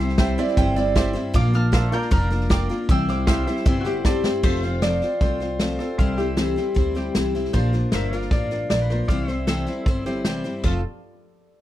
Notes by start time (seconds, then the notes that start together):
Already playing: C2 C5 E5 F5 A5 C6 D6
0.00 G3 C4 E4 C5 E5
0.09 snare
0.18 G3 C4 E4 G4 C5 E5 G5, kick, snare, hi-hat pedal
0.38 G3 C4 E4 G4 C5 D5 E5, snare
0.48 snare
0.57 G1 C3 E3 G3 C4 E4 C5 G5, kick, snare
0.76 G3 C4 E4 C5 D5, snare
0.95 G3 C4 E4 G4 C5 D5 E5, kick, snare, hi-hat pedal
1.13 G3 C4 E4 C5, snare
1.34 A#1 A#2 F3 A#3 D4 F4 A#4 F5 D6, kick, snare
1.53 A#3 D4 F4 A#4 A5 F6, snare
1.72 A#3 D4 F4 A#4 C5 D5 E5 F5, kick, snare, hi-hat pedal
1.92 A#3 D4 F4 A#4 D5 F5 A#5 G6, snare
1.99 D5, snare
2.11 F1 A#2 F3 A#3 D4 F4 A#4 A#5 F6, kick, snare
2.31 A#3 D4 F4 A#4, snare
2.41 snare
2.50 A#3 D4 F4 A#4 D5 F5 G5 D6, kick, snare, hi-hat pedal
2.69 A#3 D4 F4 A#4, snare
2.89 C2 C3 E3 G3 C4 E4 C5 G5 E6, kick, snare
3.08 G3 C4 E4 C5 F5 D6, snare
3.27 G3 C4 E4 G4 C5 E5 F5 G5 E6, kick, snare, hi-hat pedal
3.47 G3 C4 E4 G4 C5 E5, snare
3.56 snare
3.65 G1 C3 E3 G3 C4 E4 C5, kick, snare
3.80 F#4
3.85 G3 C4 E4 G4 C5, snare
4.05 G3 C4 E4 G4 C5 D5 A5, kick, snare, hi-hat pedal
4.24 G3 C4 E4 C5 G5, snare
4.43 F1 F3 A3 C4 F4 C5 E5, kick, snare, crash
4.63 C4 F4 C5 F5, snare
4.82 F3 A3 C4 F4 C5 D5, snare, hi-hat pedal
5.02 C4 F4 C5, snare
5.21 C2 A3 C4 F4 C5, kick, snare
5.40 C4 F4 C5, snare
5.60 F3 A3 C4 F4 C5, snare, hi-hat pedal
5.79 C4 F4 A4 C5, snare
5.98 C2 C3 E3 G3 C4 E4 C5 F5, kick, snare
6.18 G3 C4 E4 G4 C5 E5, snare
6.37 C3 E3 G3 C4 E4 C5, snare, hi-hat pedal
6.56 G3 C4 E4 C5, snare
6.75 D2 G3 C4 E4 C5, kick, snare
6.95 G3 C4 E4 G4 C5, snare
7.15 C2 C3 E3 G3 C4 E4 C5, snare, hi-hat pedal
7.35 G3 C4 E4 C5, snare
7.45 snare
7.53 A#1 A#2 F3 A#3 D4 F4 A#4 C5, kick, snare
7.73 A#3 D4 F4 A#4, snare
7.92 G1 A#2 F3 A#3 D4 F4 A#4 C5 E5, snare, hi-hat pedal
8.12 A#3 D4 F4 A#4 F5, snare
8.19 D5, snare
8.31 A1 A#3 D4 F4 A#4 D5, kick, snare
8.50 A#3 D4 F4 A#4, snare
8.70 A#1 A#2 F3 A#3 D4 F4 A#4 D5, snare, hi-hat pedal
8.81 B4
8.90 A#3 D4 F4 A#4 C5, snare
9.08 C2 C3 E3 G3 C4 E4 C5 D5 F5, kick, snare
9.28 G3 C4 E4 C5 E5, snare
9.33 C5
9.47 C3 E3 G3 C4 E4 A4 C5, snare, hi-hat pedal
9.67 G3 C4 E4 C5, snare
9.86 G1 G3 C4 E4 C5, kick, snare
10.06 G3 C4 E4 G4 C5, snare
10.25 C3 E3 G3 C4 E4 G4 C5, snare, hi-hat pedal
10.44 G3 C4 E4 C5, snare
10.63 F1 F3 A3 C4 F4 A4, kick, crash